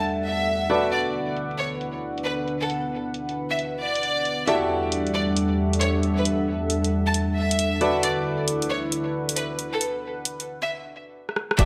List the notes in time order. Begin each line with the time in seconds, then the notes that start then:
Already playing: E2 G3 B3 D4 E4 F#4 G4 A4 D5 E5 F#5
0.03 closed hi-hat
0.25 E5
0.40 closed hi-hat
0.48 closed hi-hat
0.70 D3 E4 F#4 A4 B4 D5, closed hi-hat
0.92 D5, closed hi-hat
1.08 B4
1.37 closed hi-hat
1.51 closed hi-hat
1.59 C#5
1.81 closed hi-hat
2.18 closed hi-hat
2.25 B4, closed hi-hat
2.47 B4, closed hi-hat
2.62 A4
2.70 closed hi-hat
3.14 closed hi-hat
3.29 closed hi-hat
3.51 E5
3.59 closed hi-hat
3.81 D5
3.95 closed hi-hat
4.03 closed hi-hat
4.25 closed hi-hat
4.47 E2 G3 D4 E4 F#4 G4 A4 D5 E5, closed hi-hat
4.68 G3
4.86 A4
4.92 closed hi-hat
5.07 E5, closed hi-hat
5.14 D5
5.37 closed hi-hat
5.73 closed hi-hat
5.81 C#5, closed hi-hat
6.03 closed hi-hat
6.18 B4
6.25 closed hi-hat
6.70 closed hi-hat
6.84 closed hi-hat
7.07 A5
7.14 closed hi-hat
7.37 E5
7.51 closed hi-hat
7.59 closed hi-hat
7.81 D3 E4 F#4 A4 B4 D5, closed hi-hat
8.03 D5, closed hi-hat
8.23 B4
8.48 closed hi-hat
8.62 closed hi-hat
8.70 C#5
8.92 closed hi-hat
9.29 closed hi-hat
9.36 B4, closed hi-hat
9.59 B4, closed hi-hat
9.73 A4
9.81 closed hi-hat
10.25 closed hi-hat
10.40 closed hi-hat
10.62 E5
11.29 cross-stick
11.36 cross-stick
11.51 cross-stick
11.59 E1 F#4 G4 A4 D5 E5, kick, closed hi-hat